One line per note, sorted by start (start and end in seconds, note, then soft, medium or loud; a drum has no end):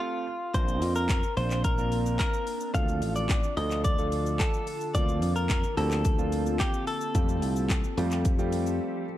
0.00 0.23 A3 medium
0.00 0.24 C4 medium
0.00 0.24 F4 medium
0.00 0.56 F4 medium
0.00 0.24 G4 medium
0.00 0.24 A4 loud
0.54 0.82 A#1 loud
0.54 1.10 A#3 medium
0.54 2.72 A#3 medium
0.54 1.10 C4 medium
0.54 2.72 C4 medium
0.54 1.10 D4 medium
0.54 4.91 D4 medium
0.54 1.11 F4 medium
0.54 1.11 A#4 medium
0.54 0.93 C5 loud
0.54 kick loud
0.54 closed hi-hat medium
0.54 shaker medium
0.68 shaker medium
0.82 1.22 F2 loud
0.82 open hi-hat medium
0.82 shaker medium
0.96 1.34 A#4 medium
0.96 shaker medium
1.09 kick loud
1.09 clap loud
1.09 closed hi-hat medium
1.09 shaker medium
1.23 shaker medium
1.36 2.18 A#1 loud
1.36 1.65 A#3 medium
1.36 1.65 C4 medium
1.36 1.65 D4 medium
1.36 1.65 F4 medium
1.36 1.65 C5 medium
1.36 1.63 C5 medium
1.36 open hi-hat medium
1.36 shaker soft
1.51 clap medium
1.51 shaker medium
1.64 2.18 A#4 loud
1.64 kick loud
1.64 closed hi-hat medium
1.64 shaker medium
1.78 2.44 A#3 medium
1.78 2.44 C4 medium
1.78 2.44 D4 medium
1.78 2.44 F4 medium
1.78 2.44 A#4 medium
1.78 shaker soft
1.92 open hi-hat medium
1.92 shaker medium
2.06 shaker medium
2.19 2.71 A#4 medium
2.19 kick loud
2.19 clap loud
2.19 closed hi-hat medium
2.19 shaker medium
2.33 shaker medium
2.47 open hi-hat medium
2.47 shaker medium
2.61 shaker medium
2.74 3.02 D2 loud
2.74 7.11 D3 medium
2.74 3.30 F3 medium
2.74 3.31 A3 medium
2.74 3.31 D4 medium
2.74 3.31 F4 medium
2.74 7.11 F4 medium
2.74 4.92 A4 medium
2.74 3.31 A4 medium
2.74 3.15 F5 loud
2.74 kick loud
2.74 closed hi-hat medium
2.74 shaker medium
2.88 shaker medium
3.02 3.42 A1 loud
3.02 open hi-hat medium
3.02 shaker medium
3.16 3.57 D5 loud
3.16 shaker medium
3.29 kick loud
3.29 clap loud
3.29 closed hi-hat medium
3.29 shaker medium
3.43 shaker medium
3.57 4.38 D2 loud
3.57 3.85 F3 medium
3.57 3.85 A3 medium
3.57 3.85 D4 medium
3.57 3.85 F4 medium
3.57 3.85 A4 medium
3.57 3.84 D#5 loud
3.57 open hi-hat medium
3.57 shaker soft
3.71 clap medium
3.71 shaker medium
3.84 4.41 D5 loud
3.84 kick loud
3.84 closed hi-hat medium
3.84 shaker medium
3.98 4.64 F3 medium
3.98 4.64 A3 medium
3.98 4.64 D4 medium
3.98 4.64 F4 medium
3.98 4.64 A4 medium
3.98 shaker soft
4.12 open hi-hat medium
4.12 shaker medium
4.26 shaker medium
4.40 4.96 A4 medium
4.40 kick loud
4.40 clap loud
4.40 closed hi-hat medium
4.40 shaker medium
4.54 shaker medium
4.67 open hi-hat medium
4.67 shaker medium
4.81 shaker medium
4.94 5.22 D2 loud
4.94 5.51 F3 medium
4.94 5.51 A#3 medium
4.94 7.13 A#3 medium
4.94 5.51 C4 medium
4.94 9.18 C4 medium
4.94 5.51 D4 medium
4.94 5.51 F4 medium
4.94 5.35 D5 loud
4.94 kick loud
4.94 closed hi-hat medium
4.94 shaker medium
5.09 shaker medium
5.22 5.63 F2 loud
5.22 open hi-hat medium
5.22 shaker medium
5.36 5.77 A#4 medium
5.36 shaker medium
5.50 kick loud
5.50 clap loud
5.50 closed hi-hat medium
5.50 shaker medium
5.64 shaker medium
5.77 6.58 D2 loud
5.77 6.05 F3 medium
5.77 6.05 A#3 medium
5.77 6.05 C4 medium
5.77 6.05 D4 medium
5.77 6.05 G4 medium
5.77 6.59 A4 medium
5.77 open hi-hat medium
5.77 shaker soft
5.91 clap medium
5.91 shaker medium
6.05 kick loud
6.05 closed hi-hat medium
6.05 shaker medium
6.18 6.84 F3 medium
6.18 6.84 A#3 medium
6.18 6.84 C4 medium
6.18 6.84 D4 medium
6.18 6.84 F4 medium
6.18 shaker soft
6.32 open hi-hat medium
6.32 shaker medium
6.46 shaker medium
6.60 6.87 G4 medium
6.60 kick loud
6.60 clap loud
6.60 closed hi-hat medium
6.60 shaker medium
6.74 shaker medium
6.87 8.76 A4 medium
6.87 open hi-hat medium
6.87 shaker soft
7.01 shaker medium
7.15 7.42 F2 loud
7.15 9.18 F3 medium
7.15 7.71 G3 medium
7.15 7.71 A3 medium
7.15 7.71 C4 medium
7.15 7.71 F4 medium
7.15 9.18 G4 medium
7.15 7.71 G4 medium
7.15 9.18 A4 medium
7.15 kick loud
7.15 closed hi-hat medium
7.15 shaker medium
7.29 shaker medium
7.42 7.83 C2 loud
7.42 open hi-hat medium
7.42 shaker medium
7.56 shaker medium
7.70 kick loud
7.70 clap loud
7.70 closed hi-hat medium
7.70 shaker medium
7.84 shaker medium
7.97 8.78 F2 loud
7.97 8.25 G3 medium
7.97 8.25 A3 medium
7.97 8.26 C4 medium
7.97 8.26 F4 medium
7.97 8.26 G4 loud
7.97 open hi-hat medium
7.97 shaker soft
8.11 clap medium
8.11 shaker medium
8.25 kick loud
8.25 closed hi-hat medium
8.25 shaker medium
8.38 9.04 G3 medium
8.38 9.04 A3 medium
8.38 9.04 C4 medium
8.38 9.04 F4 medium
8.38 9.04 G4 loud
8.38 shaker soft
8.52 open hi-hat medium
8.52 shaker medium
8.66 shaker medium